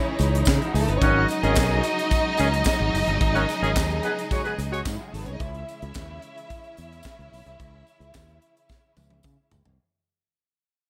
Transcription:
Already playing: C#3 E3 G#3 C#4 D#4 E4 C#5
0.19 C#2, closed hi-hat, tambourine
0.35 closed hi-hat
0.45 C#3, kick, snare, clap, tambourine
0.59 E4, closed hi-hat
0.67 F#4
0.74 C#2 G#3 G#4, open hi-hat, tambourine
0.80 A3 A4
0.88 G1 B3 B4, closed hi-hat
0.96 C#4 C#5
1.01 G#1 C#3 D#3 F#3 G#3 C#4 D#4 F#4 D#5, kick, closed hi-hat, tambourine
1.28 closed hi-hat, tambourine
1.43 G#1 D#3 C#4 G#4, closed hi-hat
1.55 B1, kick, snare, clap, tambourine
1.83 closed hi-hat, tambourine
1.99 closed hi-hat
2.11 kick, closed hi-hat, tambourine
2.37 C#2 D#3 C#4 G#4, closed hi-hat, tambourine
2.53 closed hi-hat
2.64 kick, snare, clap, tambourine
2.80 G#1
2.94 F#1, open hi-hat, tambourine
3.07 G1, closed hi-hat
3.21 G#1 G#4, kick, closed hi-hat
3.35 D#3 C#4 F#4, closed hi-hat
3.49 closed hi-hat, tambourine
3.62 G#1 D#3 C#4 G#4, closed hi-hat
3.76 D#2, kick, snare, clap, tambourine
3.90 closed hi-hat
4.03 B3 G#4 B4, closed hi-hat
4.18 closed hi-hat
4.31 G#3 F#4 C#5, kick, closed hi-hat, tambourine
4.44 B3 G#4 B4, closed hi-hat
4.58 C#2, closed hi-hat, tambourine
4.71 G#3 F#4 C#5, closed hi-hat
4.85 G#2, kick, snare, clap, tambourine
4.94 E4
5.00 F#4
5.07 G#3 G#4
5.12 G#1 A3 A4, open hi-hat, tambourine
5.19 B3 B4
5.26 C2 C#4 C#5, closed hi-hat
5.33 D#4 D#5
5.40 C#2 E3 C#4 E4 E5, kick, closed hi-hat, tambourine
5.54 closed hi-hat
5.68 closed hi-hat, tambourine
5.82 C#2, closed hi-hat
5.94 D#2, kick, snare, clap, tambourine
6.22 closed hi-hat
6.37 closed hi-hat
6.50 kick, closed hi-hat, tambourine
6.64 closed hi-hat
6.77 E2, closed hi-hat, tambourine
6.92 closed hi-hat
7.03 kick, snare, clap, tambourine
7.19 C#2, closed hi-hat
7.32 B1, open hi-hat, tambourine
7.46 C2, closed hi-hat
7.60 C#2, kick, closed hi-hat, tambourine
7.87 closed hi-hat, tambourine
8.00 C#2, closed hi-hat
8.14 D#2, kick, snare, clap, tambourine
8.29 closed hi-hat
8.42 closed hi-hat
8.57 closed hi-hat
8.69 kick, snare, tambourine
8.97 C#2, high tom, tambourine
9.10 high tom
9.23 C#3, kick, mid tom, tambourine
9.52 C#2, floor tom, tambourine
9.65 C2, floor tom

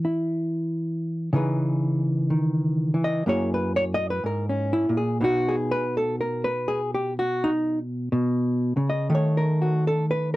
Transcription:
Already playing: E3 G#4
0.05 E4
1.33 C#3 E3 D#4 G#4 B4
2.30 D#3
2.94 E3
3.04 D#5
3.26 F#2 A#3 E4 G#4 C#5
3.54 B4
3.76 C#5
3.94 D#5
4.10 B4
4.24 G#2 A#4
4.49 C#4
4.73 E4
4.89 A#2
4.97 G#4
5.21 B2 B3 D#4 F#4
5.49 G#4
5.71 B4
5.97 A4
6.21 A#4
6.44 B4
6.68 G#4
6.95 G4
7.19 F#4
7.44 D#4
8.12 B2
8.77 C#3
8.90 D#5
9.10 D#3 A3
9.15 C#5
9.37 A#4
9.62 F#4
9.87 A4
10.11 B4

